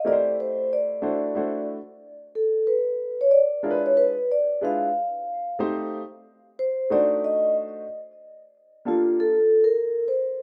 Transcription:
0, 0, Header, 1, 3, 480
1, 0, Start_track
1, 0, Tempo, 652174
1, 36, Time_signature, 4, 2, 24, 8
1, 7671, End_track
2, 0, Start_track
2, 0, Title_t, "Vibraphone"
2, 0, Program_c, 0, 11
2, 56, Note_on_c, 0, 74, 101
2, 270, Note_off_c, 0, 74, 0
2, 297, Note_on_c, 0, 72, 83
2, 534, Note_off_c, 0, 72, 0
2, 537, Note_on_c, 0, 74, 87
2, 1217, Note_off_c, 0, 74, 0
2, 1732, Note_on_c, 0, 69, 77
2, 1966, Note_on_c, 0, 71, 88
2, 1971, Note_off_c, 0, 69, 0
2, 2362, Note_on_c, 0, 73, 96
2, 2367, Note_off_c, 0, 71, 0
2, 2438, Note_on_c, 0, 74, 96
2, 2445, Note_off_c, 0, 73, 0
2, 2803, Note_off_c, 0, 74, 0
2, 2841, Note_on_c, 0, 73, 81
2, 2878, Note_off_c, 0, 73, 0
2, 2923, Note_on_c, 0, 71, 98
2, 3167, Note_off_c, 0, 71, 0
2, 3176, Note_on_c, 0, 74, 98
2, 3390, Note_off_c, 0, 74, 0
2, 3421, Note_on_c, 0, 77, 94
2, 4099, Note_off_c, 0, 77, 0
2, 4851, Note_on_c, 0, 72, 93
2, 5091, Note_off_c, 0, 72, 0
2, 5096, Note_on_c, 0, 74, 100
2, 5332, Note_on_c, 0, 75, 100
2, 5333, Note_off_c, 0, 74, 0
2, 5548, Note_off_c, 0, 75, 0
2, 6537, Note_on_c, 0, 65, 89
2, 6772, Note_on_c, 0, 69, 91
2, 6774, Note_off_c, 0, 65, 0
2, 7093, Note_off_c, 0, 69, 0
2, 7096, Note_on_c, 0, 70, 95
2, 7385, Note_off_c, 0, 70, 0
2, 7420, Note_on_c, 0, 72, 87
2, 7671, Note_off_c, 0, 72, 0
2, 7671, End_track
3, 0, Start_track
3, 0, Title_t, "Upright piano"
3, 0, Program_c, 1, 0
3, 34, Note_on_c, 1, 57, 67
3, 36, Note_on_c, 1, 60, 64
3, 39, Note_on_c, 1, 64, 61
3, 44, Note_on_c, 1, 67, 64
3, 46, Note_on_c, 1, 70, 63
3, 91, Note_on_c, 1, 72, 74
3, 103, Note_off_c, 1, 70, 0
3, 721, Note_off_c, 1, 57, 0
3, 722, Note_off_c, 1, 60, 0
3, 723, Note_off_c, 1, 64, 0
3, 726, Note_off_c, 1, 67, 0
3, 748, Note_off_c, 1, 72, 0
3, 750, Note_on_c, 1, 57, 70
3, 751, Note_on_c, 1, 62, 63
3, 754, Note_on_c, 1, 64, 60
3, 754, Note_on_c, 1, 66, 60
3, 759, Note_on_c, 1, 72, 71
3, 982, Note_off_c, 1, 57, 0
3, 985, Note_off_c, 1, 62, 0
3, 986, Note_off_c, 1, 64, 0
3, 990, Note_off_c, 1, 66, 0
3, 993, Note_on_c, 1, 57, 71
3, 994, Note_off_c, 1, 72, 0
3, 996, Note_on_c, 1, 62, 60
3, 997, Note_on_c, 1, 64, 55
3, 1001, Note_on_c, 1, 66, 60
3, 1005, Note_on_c, 1, 72, 70
3, 1296, Note_off_c, 1, 57, 0
3, 1298, Note_off_c, 1, 62, 0
3, 1298, Note_off_c, 1, 64, 0
3, 1300, Note_off_c, 1, 66, 0
3, 1302, Note_off_c, 1, 72, 0
3, 2671, Note_on_c, 1, 56, 64
3, 2672, Note_on_c, 1, 62, 66
3, 2675, Note_on_c, 1, 65, 68
3, 2676, Note_on_c, 1, 64, 62
3, 2677, Note_on_c, 1, 70, 63
3, 2727, Note_on_c, 1, 71, 90
3, 2738, Note_off_c, 1, 70, 0
3, 3037, Note_off_c, 1, 56, 0
3, 3037, Note_off_c, 1, 62, 0
3, 3039, Note_off_c, 1, 64, 0
3, 3039, Note_off_c, 1, 65, 0
3, 3065, Note_off_c, 1, 71, 0
3, 3396, Note_on_c, 1, 56, 69
3, 3401, Note_on_c, 1, 62, 62
3, 3403, Note_on_c, 1, 64, 63
3, 3405, Note_on_c, 1, 65, 61
3, 3408, Note_on_c, 1, 71, 71
3, 3584, Note_off_c, 1, 56, 0
3, 3587, Note_off_c, 1, 62, 0
3, 3588, Note_off_c, 1, 64, 0
3, 3589, Note_off_c, 1, 65, 0
3, 3591, Note_off_c, 1, 71, 0
3, 4114, Note_on_c, 1, 57, 79
3, 4116, Note_on_c, 1, 60, 78
3, 4121, Note_on_c, 1, 63, 78
3, 4121, Note_on_c, 1, 67, 77
3, 4124, Note_on_c, 1, 72, 94
3, 4417, Note_off_c, 1, 57, 0
3, 4418, Note_off_c, 1, 60, 0
3, 4420, Note_off_c, 1, 63, 0
3, 4420, Note_off_c, 1, 67, 0
3, 4422, Note_off_c, 1, 72, 0
3, 5080, Note_on_c, 1, 57, 75
3, 5086, Note_on_c, 1, 63, 69
3, 5087, Note_on_c, 1, 66, 62
3, 5088, Note_on_c, 1, 62, 63
3, 5092, Note_on_c, 1, 72, 84
3, 5764, Note_off_c, 1, 57, 0
3, 5767, Note_off_c, 1, 63, 0
3, 5767, Note_off_c, 1, 66, 0
3, 5768, Note_off_c, 1, 62, 0
3, 5770, Note_off_c, 1, 72, 0
3, 6515, Note_on_c, 1, 58, 56
3, 6520, Note_on_c, 1, 62, 59
3, 6523, Note_on_c, 1, 65, 56
3, 6524, Note_on_c, 1, 67, 49
3, 6526, Note_on_c, 1, 69, 66
3, 6879, Note_off_c, 1, 58, 0
3, 6881, Note_off_c, 1, 62, 0
3, 6883, Note_off_c, 1, 65, 0
3, 6883, Note_off_c, 1, 67, 0
3, 6884, Note_off_c, 1, 69, 0
3, 7671, End_track
0, 0, End_of_file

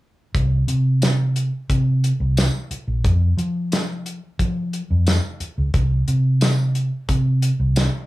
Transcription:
0, 0, Header, 1, 4, 480
1, 0, Start_track
1, 0, Tempo, 674157
1, 246, Time_signature, 4, 2, 24, 8
1, 5742, End_track
2, 0, Start_track
2, 0, Title_t, "Fingered electric bass"
2, 0, Program_c, 0, 33
2, 246, Note_on_c, 0, 36, 80
2, 441, Note_off_c, 0, 36, 0
2, 482, Note_on_c, 0, 48, 67
2, 1068, Note_off_c, 0, 48, 0
2, 1208, Note_on_c, 0, 48, 75
2, 1503, Note_off_c, 0, 48, 0
2, 1567, Note_on_c, 0, 36, 79
2, 1764, Note_off_c, 0, 36, 0
2, 2047, Note_on_c, 0, 34, 66
2, 2143, Note_off_c, 0, 34, 0
2, 2167, Note_on_c, 0, 41, 76
2, 2362, Note_off_c, 0, 41, 0
2, 2401, Note_on_c, 0, 53, 69
2, 2988, Note_off_c, 0, 53, 0
2, 3129, Note_on_c, 0, 53, 71
2, 3424, Note_off_c, 0, 53, 0
2, 3493, Note_on_c, 0, 41, 73
2, 3687, Note_off_c, 0, 41, 0
2, 3971, Note_on_c, 0, 37, 74
2, 4065, Note_off_c, 0, 37, 0
2, 4087, Note_on_c, 0, 36, 75
2, 4281, Note_off_c, 0, 36, 0
2, 4329, Note_on_c, 0, 48, 68
2, 4911, Note_off_c, 0, 48, 0
2, 5045, Note_on_c, 0, 48, 80
2, 5341, Note_off_c, 0, 48, 0
2, 5408, Note_on_c, 0, 36, 75
2, 5604, Note_off_c, 0, 36, 0
2, 5742, End_track
3, 0, Start_track
3, 0, Title_t, "Muted fingered electric bass strokes"
3, 1927, Note_on_c, 9, 29, 30
3, 1998, Note_off_c, 9, 29, 0
3, 3846, Note_on_c, 9, 29, 29
3, 3917, Note_off_c, 9, 29, 0
3, 5742, End_track
4, 0, Start_track
4, 0, Title_t, "Drums"
4, 246, Note_on_c, 9, 36, 79
4, 248, Note_on_c, 9, 42, 62
4, 317, Note_off_c, 9, 36, 0
4, 319, Note_off_c, 9, 42, 0
4, 486, Note_on_c, 9, 42, 53
4, 557, Note_off_c, 9, 42, 0
4, 726, Note_on_c, 9, 42, 65
4, 726, Note_on_c, 9, 54, 80
4, 734, Note_on_c, 9, 38, 85
4, 797, Note_off_c, 9, 42, 0
4, 797, Note_off_c, 9, 54, 0
4, 806, Note_off_c, 9, 38, 0
4, 968, Note_on_c, 9, 42, 52
4, 1039, Note_off_c, 9, 42, 0
4, 1208, Note_on_c, 9, 36, 70
4, 1208, Note_on_c, 9, 42, 74
4, 1279, Note_off_c, 9, 36, 0
4, 1279, Note_off_c, 9, 42, 0
4, 1452, Note_on_c, 9, 42, 54
4, 1523, Note_off_c, 9, 42, 0
4, 1689, Note_on_c, 9, 42, 70
4, 1689, Note_on_c, 9, 54, 85
4, 1698, Note_on_c, 9, 38, 88
4, 1760, Note_off_c, 9, 42, 0
4, 1760, Note_off_c, 9, 54, 0
4, 1769, Note_off_c, 9, 38, 0
4, 1929, Note_on_c, 9, 42, 49
4, 2000, Note_off_c, 9, 42, 0
4, 2168, Note_on_c, 9, 36, 79
4, 2168, Note_on_c, 9, 42, 72
4, 2239, Note_off_c, 9, 36, 0
4, 2239, Note_off_c, 9, 42, 0
4, 2410, Note_on_c, 9, 42, 53
4, 2481, Note_off_c, 9, 42, 0
4, 2649, Note_on_c, 9, 42, 68
4, 2649, Note_on_c, 9, 54, 79
4, 2657, Note_on_c, 9, 38, 85
4, 2720, Note_off_c, 9, 42, 0
4, 2720, Note_off_c, 9, 54, 0
4, 2729, Note_off_c, 9, 38, 0
4, 2890, Note_on_c, 9, 42, 50
4, 2961, Note_off_c, 9, 42, 0
4, 3128, Note_on_c, 9, 36, 67
4, 3129, Note_on_c, 9, 42, 70
4, 3200, Note_off_c, 9, 36, 0
4, 3201, Note_off_c, 9, 42, 0
4, 3370, Note_on_c, 9, 42, 47
4, 3441, Note_off_c, 9, 42, 0
4, 3607, Note_on_c, 9, 42, 63
4, 3607, Note_on_c, 9, 54, 87
4, 3615, Note_on_c, 9, 38, 87
4, 3678, Note_off_c, 9, 42, 0
4, 3678, Note_off_c, 9, 54, 0
4, 3687, Note_off_c, 9, 38, 0
4, 3847, Note_on_c, 9, 42, 48
4, 3918, Note_off_c, 9, 42, 0
4, 4086, Note_on_c, 9, 42, 66
4, 4087, Note_on_c, 9, 36, 83
4, 4157, Note_off_c, 9, 42, 0
4, 4158, Note_off_c, 9, 36, 0
4, 4327, Note_on_c, 9, 42, 55
4, 4398, Note_off_c, 9, 42, 0
4, 4565, Note_on_c, 9, 42, 69
4, 4565, Note_on_c, 9, 54, 93
4, 4573, Note_on_c, 9, 38, 91
4, 4636, Note_off_c, 9, 42, 0
4, 4636, Note_off_c, 9, 54, 0
4, 4644, Note_off_c, 9, 38, 0
4, 4806, Note_on_c, 9, 42, 51
4, 4878, Note_off_c, 9, 42, 0
4, 5046, Note_on_c, 9, 36, 72
4, 5046, Note_on_c, 9, 42, 78
4, 5117, Note_off_c, 9, 42, 0
4, 5118, Note_off_c, 9, 36, 0
4, 5286, Note_on_c, 9, 42, 57
4, 5357, Note_off_c, 9, 42, 0
4, 5525, Note_on_c, 9, 42, 71
4, 5525, Note_on_c, 9, 54, 94
4, 5534, Note_on_c, 9, 38, 95
4, 5597, Note_off_c, 9, 42, 0
4, 5597, Note_off_c, 9, 54, 0
4, 5605, Note_off_c, 9, 38, 0
4, 5742, End_track
0, 0, End_of_file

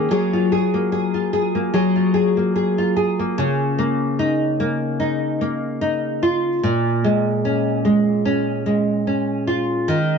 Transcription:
0, 0, Header, 1, 2, 480
1, 0, Start_track
1, 0, Key_signature, -5, "major"
1, 0, Tempo, 814111
1, 70, Time_signature, 4, 2, 24, 8
1, 6002, End_track
2, 0, Start_track
2, 0, Title_t, "Nylon-string guitar"
2, 0, Program_c, 0, 24
2, 0, Note_on_c, 0, 51, 74
2, 0, Note_on_c, 0, 58, 59
2, 0, Note_on_c, 0, 61, 59
2, 0, Note_on_c, 0, 68, 62
2, 61, Note_off_c, 0, 51, 0
2, 64, Note_on_c, 0, 54, 76
2, 65, Note_off_c, 0, 68, 0
2, 67, Note_on_c, 0, 68, 70
2, 194, Note_off_c, 0, 61, 0
2, 196, Note_on_c, 0, 65, 54
2, 304, Note_off_c, 0, 68, 0
2, 306, Note_on_c, 0, 68, 63
2, 324, Note_off_c, 0, 58, 0
2, 436, Note_on_c, 0, 58, 52
2, 541, Note_off_c, 0, 68, 0
2, 543, Note_on_c, 0, 68, 63
2, 670, Note_off_c, 0, 65, 0
2, 673, Note_on_c, 0, 65, 51
2, 782, Note_off_c, 0, 68, 0
2, 785, Note_on_c, 0, 68, 64
2, 912, Note_off_c, 0, 58, 0
2, 914, Note_on_c, 0, 58, 50
2, 1017, Note_off_c, 0, 54, 0
2, 1024, Note_on_c, 0, 54, 79
2, 1025, Note_off_c, 0, 68, 0
2, 1028, Note_on_c, 0, 68, 64
2, 1153, Note_off_c, 0, 65, 0
2, 1155, Note_on_c, 0, 65, 51
2, 1260, Note_off_c, 0, 68, 0
2, 1262, Note_on_c, 0, 68, 59
2, 1395, Note_off_c, 0, 58, 0
2, 1398, Note_on_c, 0, 58, 48
2, 1505, Note_off_c, 0, 68, 0
2, 1508, Note_on_c, 0, 68, 57
2, 1638, Note_off_c, 0, 65, 0
2, 1641, Note_on_c, 0, 65, 55
2, 1746, Note_off_c, 0, 68, 0
2, 1749, Note_on_c, 0, 68, 56
2, 1881, Note_off_c, 0, 58, 0
2, 1884, Note_on_c, 0, 58, 53
2, 1993, Note_on_c, 0, 49, 88
2, 2041, Note_off_c, 0, 54, 0
2, 2229, Note_off_c, 0, 58, 0
2, 2232, Note_on_c, 0, 58, 66
2, 2249, Note_off_c, 0, 68, 0
2, 2468, Note_off_c, 0, 65, 0
2, 2471, Note_on_c, 0, 63, 61
2, 2709, Note_off_c, 0, 58, 0
2, 2711, Note_on_c, 0, 58, 68
2, 2939, Note_off_c, 0, 63, 0
2, 2946, Note_on_c, 0, 63, 67
2, 3187, Note_off_c, 0, 58, 0
2, 3190, Note_on_c, 0, 58, 61
2, 3420, Note_off_c, 0, 63, 0
2, 3427, Note_on_c, 0, 63, 65
2, 3670, Note_on_c, 0, 65, 73
2, 3907, Note_off_c, 0, 49, 0
2, 3910, Note_on_c, 0, 46, 82
2, 3962, Note_off_c, 0, 63, 0
2, 4149, Note_off_c, 0, 58, 0
2, 4151, Note_on_c, 0, 56, 69
2, 4391, Note_on_c, 0, 61, 60
2, 4625, Note_off_c, 0, 56, 0
2, 4628, Note_on_c, 0, 56, 65
2, 4865, Note_off_c, 0, 61, 0
2, 4867, Note_on_c, 0, 61, 70
2, 5104, Note_off_c, 0, 56, 0
2, 5106, Note_on_c, 0, 56, 59
2, 5346, Note_off_c, 0, 61, 0
2, 5348, Note_on_c, 0, 61, 57
2, 5583, Note_off_c, 0, 65, 0
2, 5585, Note_on_c, 0, 65, 67
2, 5825, Note_on_c, 0, 51, 88
2, 5828, Note_off_c, 0, 46, 0
2, 5880, Note_off_c, 0, 65, 0
2, 6002, Note_off_c, 0, 51, 0
2, 6002, Note_off_c, 0, 56, 0
2, 6002, Note_off_c, 0, 61, 0
2, 6002, End_track
0, 0, End_of_file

